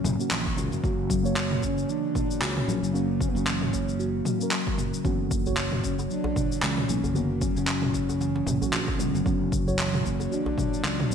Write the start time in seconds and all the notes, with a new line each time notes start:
Already playing: A#3 C#4 F#4
0.04 F#1 C#3, mid tom, shaker
0.19 A#3 C#4 F#4, shaker
0.31 A#1 E3, clap, shaker
0.46 kick
0.56 C#2 A#3 C#4 F#4, mid tom, shaker
0.72 F#1, shaker
0.83 F#1 A#3 C#4 F#4, kick, shaker
1.10 F#3, kick, shaker
1.23 A#3 F#4 C#5, shaker
1.36 F#3, clap, shaker
1.51 mid tom
1.62 C#3 C#4, kick, shaker
1.78 shaker
1.89 E3 D4, shaker
2.15 A#3, kick, mid tom, shaker
2.31 shaker
2.41 C#2 C#4 F#4, clap, shaker
2.57 mid tom
2.68 A#1 F#3, shaker
2.83 F#1, shaker
2.93 F#3 A#3 C#4 F#4, shaker
3.21 C#3 C#4, kick, shaker
3.28 B3
3.33 F#1 A#3 C#4, shaker
3.37 F#4
3.47 E3, clap, shaker
3.61 mid tom
3.73 A#3, kick, shaker
3.89 shaker
3.99 F#4, shaker
4.25 F#3, mid tom, shaker
4.39 A#3 C#4, shaker
4.43 A#4
4.51 F#3, clap, shaker
4.67 kick
4.78 F#1 C#3, mid tom, shaker
4.94 shaker
5.03 F#1 D3 E3 F#3 B3 C#4 F#4, kick, shaker
5.31 A#3, kick, shaker
5.44 F#3 F#4 C#5, djembe bass, shaker
5.57 F#4, clap, shaker
5.72 mid tom
5.84 F#3 C#4, kick, shaker
5.99 djembe slap, djembe tone, shaker
6.10 F#3 D4, shaker
6.24 djembe slap, djembe bass
6.36 C#3, kick, mid tom, djembe tone, shaker
6.52 shaker
6.62 C#2 E3 C#4, clap, shaker
6.77 mid tom
6.89 B1 A#3, shaker
7.03 F#1, djembe bass, shaker
7.14 D3 F#3 A#3 B3 C#4 F#4, shaker
7.41 F#3 C#4, kick, djembe tone, shaker
7.55 F#1 F#3 C#4 F#4, shaker
7.67 F#3, clap, shaker
7.82 mid tom, djembe slap
7.94 C#3, kick, shaker
8.09 djembe slap, djembe tone, shaker
8.21 E3, djembe slap, shaker
8.36 djembe slap
8.47 F#1 A#3, mid tom, shaker
8.61 F#3 C#4 F#4, djembe bass, shaker
8.73 A#1 F#4, clap, shaker
8.88 kick, djembe tone
8.98 C#2 D3 F#3 B3 C#4 F#4, mid tom, shaker
9.15 F#1, djembe tone, shaker
9.24 F#1 D3 F#3 B3 C#4 F#4, kick, shaker
9.52 C#3, kick, shaker
9.65 F#3 F#4 C#5, djembe bass, shaker
9.79 E3, clap, shaker
9.94 mid tom
10.05 A#3 C#4, kick, shaker
10.20 djembe slap, djembe tone, shaker
10.32 D4 F#4, shaker
10.46 djembe slap, djembe bass
10.57 F#3, kick, mid tom, djembe tone, shaker
10.74 shaker
10.84 C#2 F#3, clap, djembe slap, shaker
11.00 mid tom
11.10 B1 C#3 B3, shaker